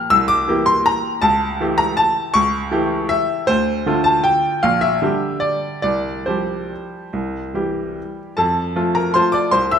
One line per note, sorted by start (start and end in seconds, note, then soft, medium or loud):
0.00 0.11 F6 loud
0.10 0.47 C2 medium
0.10 0.29 E6 loud
0.28 0.66 D6 loud
0.48 1.19 E3 medium
0.48 1.19 A#3 medium
0.48 1.19 G4 medium
0.66 0.85 C6 loud
0.86 1.23 A#5 loud
1.22 1.58 C#2 medium
1.22 1.77 A5 loud
1.60 2.31 E3 medium
1.60 2.31 A3 medium
1.60 2.31 G4 medium
1.78 1.97 A#5 loud
1.97 2.34 A5 loud
2.34 2.71 C#2 medium
2.34 3.10 C#6 loud
2.71 3.44 E3 medium
2.71 3.44 A3 medium
2.71 3.45 G4 medium
3.09 3.48 E5 loud
3.47 3.85 D2 medium
3.47 4.06 C5 loud
3.86 4.60 D3 medium
3.86 4.60 A3 medium
3.86 4.61 F4 medium
4.04 4.25 A5 loud
4.24 4.63 G5 medium
4.63 5.00 A#1 medium
4.63 4.82 F5 medium
4.81 5.41 E5 loud
5.02 5.80 D3 medium
5.02 5.80 G3 medium
5.02 5.80 G4 medium
5.40 5.81 D5 medium
5.82 6.25 C2 medium
5.82 6.26 D5 medium
6.26 7.09 F3 soft
6.26 7.09 G3 soft
6.26 7.09 G4 medium
6.26 8.18 C5 medium
7.13 7.53 C2 medium
7.54 8.34 E3 soft
7.54 8.34 G3 soft
7.54 8.34 G4 soft
8.37 8.75 F2 medium
8.37 8.91 A4 medium
8.37 8.95 A5 medium
8.76 9.11 F3 medium
8.76 9.12 A3 medium
8.76 9.12 F4 medium
8.95 9.14 A#4 medium
8.95 9.15 A#5 medium
9.14 9.50 F3 medium
9.14 9.50 A3 medium
9.14 9.50 F4 medium
9.14 9.34 C5 medium
9.14 9.34 C6 medium
9.32 9.52 D5 medium
9.32 9.52 D6 medium
9.51 9.79 C2 medium
9.51 9.71 C5 medium
9.51 9.72 C6 loud
9.71 9.79 E5 medium
9.71 9.79 E6 medium